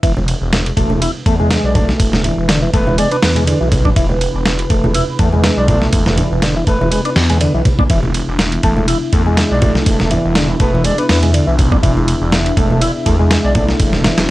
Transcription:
0.03 E1 E3 B3 D4 E4 G#4 B4, kick, ride
0.17 high conga
0.28 ride
0.41 E1
0.53 snare, ride, high conga
0.66 ride
0.77 E1 A3, kick, ride
0.90 high conga
1.01 E4, ride
1.26 E2 A3, kick, ride
1.40 G#3, high conga
1.51 snare, ride
1.64 B1 D5
1.75 A3 D5, kick, ride, high conga, low conga
1.89 snare
2.00 E1, kick, ride
2.13 snare, high conga
2.24 E3, ride, low conga
2.38 E1
2.49 D3, snare, ride, high conga
2.62 E3
2.73 E1 A3 B4, kick, ride
2.87 E3, high conga
2.98 G#3 D5, ride
3.11 D4 B4, ride
3.23 E2 B4, snare, open hi-hat
3.35 G#3, ride, high conga
3.47 D3, ride
3.61 B1 E3
3.72 kick, ride, high conga
3.85 D4, kick, low conga
3.96 E1 E3, kick, ride
4.09 high conga
4.21 ride
4.34 E1
4.45 snare, ride, high conga
4.59 ride
4.70 E1 A3, kick, ride
4.84 high conga
4.94 E4, ride
5.19 E2 A3, kick, ride
5.33 G#3, high conga
5.44 snare, ride
5.57 B1 D5
5.68 A3 D5, kick, ride, high conga, low conga
5.82 snare
5.93 E1, kick, ride
6.06 snare, high conga
6.17 E3, ride, low conga
6.31 E1
6.42 D3, snare, ride, high conga
6.56 E3
6.67 E1 A3 B4, kick, ride
6.81 E3, high conga
6.91 G#3 B4, ride
7.05 D4 B4, ride
7.16 E2, snare, open hi-hat
7.30 G#3, ride, high conga
7.41 D3, ride
7.54 B1 E3
7.65 kick, ride, high conga
7.79 D4, kick, low conga
7.90 E1 E3 E5, kick, ride
8.03 high conga
8.14 ride
8.28 E1
8.39 snare, ride, high conga
8.52 ride
8.63 E1 A3, kick, ride
8.77 high conga
8.88 E4, ride
9.13 E2 A3, kick, ride
9.26 G#3, high conga
9.37 snare, ride
9.51 B1 D5
9.62 A3 D5, kick, ride, high conga, low conga
9.75 snare
9.86 E1, kick, ride
10.00 snare, high conga
10.11 E3, ride, low conga
10.25 E1
10.35 D3, snare, ride, high conga
10.49 E3
10.60 E1 A3 B4, kick, ride
10.74 E3, high conga
10.84 G#3 D5, ride
10.98 D4 B4, ride
11.09 E2 B4, snare, open hi-hat
11.23 G#3, ride, high conga
11.34 D3, ride
11.47 B1 E3
11.58 kick, ride, high conga
11.72 D4, kick, low conga
11.83 E1 E3, kick, ride
11.97 high conga
12.08 ride
12.21 E1
12.32 snare, ride, high conga
12.46 ride
12.57 E1 A3, kick, ride
12.70 high conga
12.81 E4, ride
13.06 E2 A3, kick, ride
13.19 G#3, high conga
13.31 snare, ride
13.44 B1 D5
13.55 A3 D5, kick, ride, high conga, low conga
13.69 snare
13.80 E1, kick, ride
13.93 snare, high conga
14.04 E3, snare, ride, low conga
14.18 E1, snare, ride

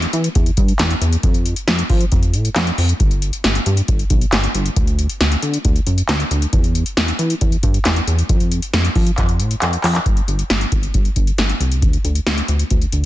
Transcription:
0.02 closed hi-hat
0.13 E3, closed hi-hat
0.24 closed hi-hat
0.35 E2, kick, closed hi-hat
0.46 closed hi-hat
0.57 G2, kick, closed hi-hat
0.68 closed hi-hat
0.79 E2, snare, clap, closed hi-hat
0.90 closed hi-hat
1.01 E2, closed hi-hat
1.13 closed hi-hat
1.23 F2, kick, closed hi-hat
1.34 closed hi-hat
1.46 closed hi-hat
1.56 closed hi-hat
1.68 F2, snare, closed hi-hat
1.79 closed hi-hat
1.90 F3, kick, open hi-hat
2.01 closed hi-hat
2.12 F2, kick, closed hi-hat
2.23 closed hi-hat
2.34 A2, closed hi-hat
2.45 closed hi-hat
2.56 F2, snare, clap, closed hi-hat
2.67 closed hi-hat
2.78 F2, open hi-hat
2.89 closed hi-hat
3.00 G1, kick, closed hi-hat
3.11 closed hi-hat
3.22 closed hi-hat
3.33 closed hi-hat
3.44 G1, snare, closed hi-hat
3.55 closed hi-hat
3.66 G2, closed hi-hat
3.77 closed hi-hat
3.88 G1, kick, closed hi-hat
3.99 closed hi-hat
4.10 B1, kick, closed hi-hat
4.21 closed hi-hat
4.32 G1, snare, clap, closed hi-hat
4.44 closed hi-hat
4.54 G1, closed hi-hat
4.66 closed hi-hat
4.76 D2, kick, closed hi-hat
4.87 closed hi-hat
4.99 closed hi-hat
5.09 closed hi-hat
5.21 D2, snare, closed hi-hat
5.32 closed hi-hat
5.42 D3, closed hi-hat
5.54 closed hi-hat
5.65 D2, kick, closed hi-hat
5.76 closed hi-hat
5.87 F#2, closed hi-hat
5.98 closed hi-hat
6.09 D2, snare, clap, closed hi-hat
6.20 closed hi-hat
6.31 D2, closed hi-hat
6.42 closed hi-hat
6.53 E2, kick, closed hi-hat
6.64 closed hi-hat
6.75 closed hi-hat
6.86 closed hi-hat
6.97 E2, snare, closed hi-hat
7.08 closed hi-hat
7.19 E3, closed hi-hat
7.30 closed hi-hat
7.41 E2, kick, closed hi-hat
7.52 closed hi-hat
7.63 G2, kick, closed hi-hat
7.74 closed hi-hat
7.85 E2, snare, clap, closed hi-hat
7.96 closed hi-hat
8.07 E2, closed hi-hat
8.19 closed hi-hat
8.29 F2, kick, closed hi-hat
8.40 closed hi-hat
8.52 closed hi-hat
8.62 closed hi-hat
8.74 F2, snare, closed hi-hat
8.85 closed hi-hat
8.95 F3, kick, open hi-hat
9.07 closed hi-hat
9.18 F2, kick, clap, closed hi-hat
9.29 closed hi-hat
9.40 A2, closed hi-hat
9.51 closed hi-hat
9.62 F2, clap, closed hi-hat
9.73 closed hi-hat
9.84 F2, clap, open hi-hat
9.95 clap, closed hi-hat
10.06 G1, kick, closed hi-hat
10.17 closed hi-hat
10.28 G1, closed hi-hat
10.39 closed hi-hat
10.50 G1, snare, closed hi-hat
10.61 closed hi-hat
10.72 G1, kick, closed hi-hat
10.83 closed hi-hat
10.94 G1, kick, closed hi-hat
11.05 closed hi-hat
11.16 G1, kick, closed hi-hat
11.27 closed hi-hat
11.38 G1, snare, closed hi-hat
11.49 closed hi-hat
11.60 C2, closed hi-hat
11.72 closed hi-hat
11.82 D2, kick, closed hi-hat
11.93 closed hi-hat
12.04 D2, closed hi-hat
12.15 closed hi-hat
12.26 D2, snare, closed hi-hat
12.38 closed hi-hat
12.48 D2, closed hi-hat
12.59 closed hi-hat
12.70 D2, kick, closed hi-hat
12.82 closed hi-hat
12.92 D2, closed hi-hat

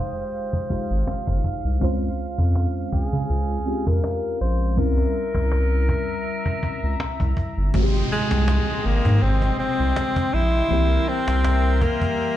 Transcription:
Already playing: G#3 D#4 F4 G4 C5 F5 G5 D#6
0.09 cajon slap
0.21 cajon slap
0.33 cajon slap
0.53 cajon bass
0.70 G#1 G#3 D#4 F4 G4 C5, cajon bass
0.91 G#1
1.07 G1, cajon slap
1.27 G1, cajon bass
1.44 cajon bass
1.65 C2
1.80 C#2 G#3 C4 C#4 F4, cajon bass
1.84 C5
2.38 F2, cajon bass
2.55 cajon slap
2.93 C#2 G#4, cajon bass
3.05 cajon slap
3.13 C#3
3.17 cajon slap
3.29 C#2, cajon slap
3.66 G#3 C4 C#4 F4 G4, cajon slap
3.87 F2 A#4, cajon bass
4.04 cajon slap
4.41 A#1 C5
4.76 C2 G3 C4 C#4 E4 A#4 E5 A#5, cajon bass
4.80 A#4
4.98 cajon slap
5.35 C2, cajon bass, cajon slap
5.52 cajon slap
5.89 cajon bass
6.01 cajon slap
6.13 cajon slap
6.26 cajon slap
6.46 cajon bass
6.63 C#2, cajon bass
6.83 C#2
7.00 C2, cajon slap
7.20 C2, cajon bass
7.37 cajon bass
7.58 G1
7.72 G#1 C3 G#3 C4 D#5 G5 C6, cajon bass, downlifter
7.76 F#4
7.83 G4
8.12 G#3, cajon slap
8.31 C2, cajon slap
8.48 cajon slap
8.85 G#1 A#3, cajon slap
9.05 G#2, cajon bass
9.22 G#1 C4, cajon slap
9.42 cajon slap
9.59 C4, cajon slap
9.80 C2
9.96 cajon slap
10.16 cajon bass
10.34 A#1 E4
10.68 C2 E3 G3 A#3 C4 A#4 E5, cajon slap
10.73 G4
11.08 C4, cajon slap
11.28 C2, cajon slap
11.44 cajon slap
11.82 A#3, cajon bass
12.02 cajon bass
12.18 cajon slap

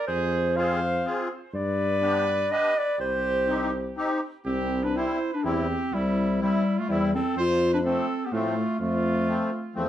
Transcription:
0.07 F2 G#4 C5
0.56 C4 F4 G#4 C5 F5
1.05 C4 F4 G#4
1.54 G2 B4 D5
2.01 B3 D4 G4
2.50 B3 D4 G4 B4 D#5
2.77 B4 D5
2.98 C2 G4 C5
3.47 C4 D#4 G4
3.96 C4 D#4 G4
4.46 C2 C4 G4
4.84 D4 B4
4.94 G3 C4 E4 C5
5.33 D4 B4
5.43 E2 G3 C4 E4 G4
5.92 C2 G3 E4
6.40 G3 C4 E4
6.78 A3 F4
6.88 E2 G3 C4 E4
7.14 C4 A4
7.36 F2 F4 C5
7.73 D4 B4
7.83 F3 A3 C4 A4
8.25 B3 G4
8.31 A2 F3 A3 C4 F4
8.80 F2 A3 F4
9.27 F3 A3 C4
9.75 E2 F3 A3 C4

